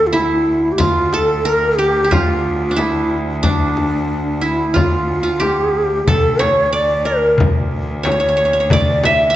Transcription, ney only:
0.07 0.16 F4 medium
0.15 0.74 E4 medium
0.72 0.82 G4 medium
0.80 1.15 F4 medium
1.14 1.47 A4 medium
1.46 1.80 A#4 medium
1.78 2.14 G4 medium
2.13 2.70 F4 medium
2.70 2.81 F4 medium
2.80 3.17 E4 medium
3.46 4.45 D4 medium
4.43 4.78 E4 medium
4.76 5.42 F4 medium
5.41 6.10 G4 medium
6.09 6.43 A4 medium
6.41 6.73 C#5 medium
6.74 7.08 D5 medium
7.06 7.39 A#4 medium
8.06 8.73 C#5 medium
8.72 9.07 D5 medium
9.06 9.36 E5 medium

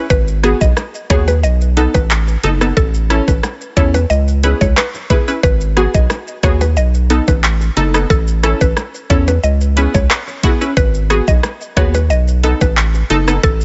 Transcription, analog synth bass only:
0.10 0.54 G#1 loud
0.61 0.75 B1 medium
1.10 1.45 D#2 medium
1.44 1.87 B1 loud
1.95 2.37 A1 loud
2.44 2.72 F#1 medium
2.77 3.21 A1 loud
3.28 3.41 A1 medium
3.77 4.05 E2 medium
4.10 4.54 C#2 loud
4.61 4.75 C#2 medium
5.44 5.87 G#1 loud
5.94 6.08 B1 medium
6.43 6.78 D#2 medium
6.77 7.20 B1 loud
7.28 7.70 A1 medium
7.77 8.05 F#1 medium
8.10 8.54 A1 loud
8.61 8.75 A1 medium
9.10 9.39 E2 medium
9.43 9.87 C#2 loud
9.95 10.08 C#2 medium
10.77 11.21 G#1 loud
11.28 11.41 B1 medium
11.77 12.12 D#2 medium
12.10 12.54 B1 loud
12.61 13.03 A1 loud
13.10 13.39 F#1 loud
13.44 13.65 A1 loud

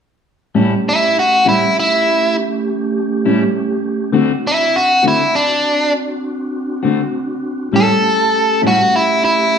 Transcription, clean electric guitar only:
0.55 0.73 A2 medium
0.55 0.73 G3 medium
0.55 0.73 C#4 medium
0.55 0.74 E4 medium
1.45 1.64 A2 soft
1.45 1.63 G3 medium
1.45 1.63 C#4 medium
1.45 1.63 E4 medium
3.25 3.43 A2 medium
3.25 3.43 G3 medium
3.25 3.43 C#4 medium
3.25 3.43 E4 medium
4.12 4.31 D3 medium
4.12 4.31 A3 medium
4.12 4.32 C4 medium
4.12 4.32 F#4 medium
5.03 5.22 D3 medium
5.03 5.21 A3 medium
5.03 5.21 C4 medium
5.03 5.21 F#4 medium
6.83 7.01 D3 soft
6.83 7.01 A3 medium
6.83 7.01 C4 medium
6.83 7.00 F#4 medium
7.73 7.90 A2 medium
7.73 7.90 G3 medium
7.73 7.91 C#4 medium
7.73 7.91 E4 medium
8.62 8.80 A2 medium
8.62 8.80 G3 soft
8.62 8.80 C#4 medium
8.62 8.80 E4 medium

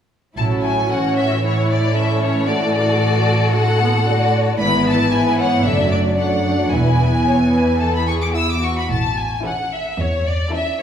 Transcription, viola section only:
0.37 0.87 F#3 soft
0.37 1.40 C#4 soft
0.91 1.96 E3 soft
1.45 1.97 E4 soft
1.97 3.51 E3 soft
1.97 2.48 C#4 soft
2.49 3.52 A3 soft
3.53 4.06 D3 soft
3.53 3.80 A3 medium
3.81 3.89 B3 soft
4.07 4.59 D3 soft
4.07 4.59 A3 soft
4.60 5.09 E3 medium
4.60 5.09 B3 medium
5.12 5.64 E3 soft
5.12 5.64 B3 soft
5.65 6.18 F#3 soft
5.65 6.18 A3 soft
6.19 6.72 F#3 soft
6.19 6.72 A3 soft
6.73 8.70 E3 soft
6.73 8.70 B3 soft
9.45 9.85 E3 soft
9.45 9.85 C#4 soft
10.52 10.82 E3 soft
10.52 10.82 C#4 soft

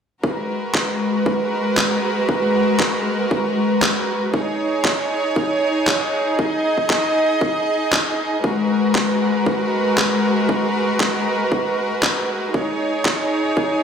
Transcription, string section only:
0.23 4.30 G#3 medium
0.23 4.30 F#4 medium
0.23 4.30 A#4 medium
0.23 4.30 B4 medium
4.34 8.40 D#4 medium
4.34 8.40 G#4 medium
4.34 6.37 C#5 medium
6.39 8.42 D#5 medium
8.44 12.50 G#3 medium
8.44 12.50 F#4 medium
8.44 12.50 A#4 medium
8.44 12.50 B4 medium
12.54 13.83 D#4 medium
12.54 13.83 G#4 medium
12.54 13.83 C#5 medium

